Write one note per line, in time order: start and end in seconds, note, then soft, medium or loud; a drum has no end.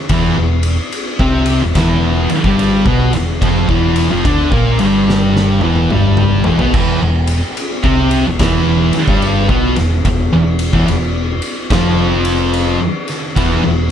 0.09 0.35 E1 medium
0.09 0.36 E2 medium
0.09 0.36 E3 loud
0.09 kick loud
0.09 ride loud
0.37 0.76 E1 medium
0.37 0.73 E2 medium
0.63 ride loud
0.92 ride loud
1.19 1.59 C2 loud
1.19 1.61 C3 loud
1.19 1.62 C4 loud
1.19 kick loud
1.46 ride medium
1.61 1.75 E1 medium
1.61 1.74 E2 medium
1.75 2.26 E1 loud
1.75 2.28 E2 loud
1.75 2.29 E3 loud
1.75 kick loud
1.75 snare loud
1.75 ride loud
2.30 muted fingered electric bass stroke soft
2.30 muted distorted electric guitar stroke medium
2.30 ride medium
2.44 2.83 G1 loud
2.44 2.85 G2 medium
2.44 2.86 G3 loud
2.44 kick loud
2.59 ride loud
2.86 3.11 B1 loud
2.86 3.12 B2 medium
2.86 3.12 B3 loud
2.86 kick loud
3.13 3.41 E1 medium
3.13 3.37 E2 medium
3.13 snare soft
3.13 ride medium
3.42 3.67 F1 loud
3.42 3.68 F2 loud
3.42 3.68 F3 loud
3.42 kick loud
3.42 ride loud
3.69 4.07 E1 medium
3.69 4.10 E2 medium
3.69 4.10 E3 loud
3.69 kick loud
3.96 ride medium
4.11 4.25 F1 medium
4.11 4.24 F2 medium
4.11 4.25 F3 loud
4.25 4.50 D2 medium
4.25 4.51 D3 medium
4.25 4.51 D4 loud
4.25 kick loud
4.25 ride loud
4.52 4.77 A#1 medium
4.52 4.78 A#2 medium
4.52 4.78 A#3 loud
4.52 kick loud
4.79 5.59 G1 loud
4.79 5.60 G2 loud
4.79 5.61 G3 loud
4.79 ride medium
5.09 snare medium
5.36 snare medium
5.61 5.90 E1 loud
5.61 5.91 E2 medium
5.61 5.91 E3 loud
5.61 high tom medium
5.75 high tom medium
5.90 6.42 G1 loud
5.90 6.43 G2 loud
5.90 6.44 G3 loud
5.90 mid tom medium
6.17 mid tom medium
6.44 6.59 E1 medium
6.44 6.59 E2 medium
6.44 6.59 E3 loud
6.44 floor tom loud
6.59 6.74 B1 medium
6.59 6.73 B2 medium
6.59 6.74 B3 medium
6.59 floor tom medium
6.74 6.99 E1 loud
6.74 6.99 E2 medium
6.74 7.00 E3 loud
6.74 kick loud
6.74 crash loud
7.01 7.40 E1 medium
7.01 7.37 E2 medium
7.27 ride loud
7.57 ride loud
7.84 8.23 C2 loud
7.84 8.24 C3 loud
7.84 8.25 C4 loud
7.84 kick loud
8.11 ride medium
8.26 8.39 E1 medium
8.26 8.38 E2 medium
8.39 8.90 E1 loud
8.39 8.92 E2 loud
8.39 8.92 E3 loud
8.39 kick loud
8.39 snare loud
8.39 ride loud
8.93 muted distorted electric guitar stroke medium
8.93 ride medium
9.08 9.47 G1 loud
9.08 9.48 G2 medium
9.08 9.49 G3 medium
9.08 kick loud
9.22 ride loud
9.49 9.74 B1 loud
9.49 9.75 B2 loud
9.49 9.75 B3 loud
9.49 kick loud
9.76 10.04 E1 medium
9.76 10.00 E2 medium
9.76 snare soft
9.76 ride medium
10.05 10.30 E1 medium
10.05 10.31 E2 medium
10.05 kick loud
10.05 ride loud
10.32 10.71 E1 medium
10.32 10.68 E2 medium
10.59 ride medium
10.73 10.87 E1 loud
10.73 10.87 E2 loud
10.73 10.88 E3 loud
10.73 kick loud
10.88 11.38 E1 medium
10.88 11.32 E2 medium
10.88 ride loud
11.42 ride medium
11.70 12.77 F1 loud
11.70 12.79 F2 loud
11.70 12.80 F3 loud
11.70 kick loud
11.70 snare loud
11.70 ride loud
12.25 ride medium
12.54 ride loud
13.08 snare soft
13.08 ride medium
13.36 13.62 E1 medium
13.36 13.62 E2 medium
13.36 13.63 E3 medium
13.36 kick loud
13.36 ride loud
13.64 13.91 E1 medium
13.64 13.91 E2 medium